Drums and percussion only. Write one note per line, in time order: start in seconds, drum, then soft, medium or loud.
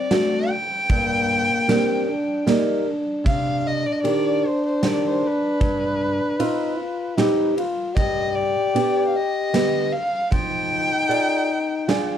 0.11 snare medium
0.11 ride soft
0.90 kick medium
0.90 ride soft
1.69 snare medium
1.69 ride medium
2.47 snare medium
2.47 ride soft
3.26 kick medium
3.26 ride soft
4.05 ride soft
4.83 snare medium
4.83 ride soft
5.61 kick medium
5.61 ride soft
6.40 ride soft
7.18 snare medium
7.18 ride soft
7.58 ride soft
7.97 kick medium
7.97 ride soft
8.76 ride soft
9.54 snare medium
9.54 ride medium
10.32 kick medium
10.32 ride soft
11.11 ride soft
11.89 snare medium
11.89 ride soft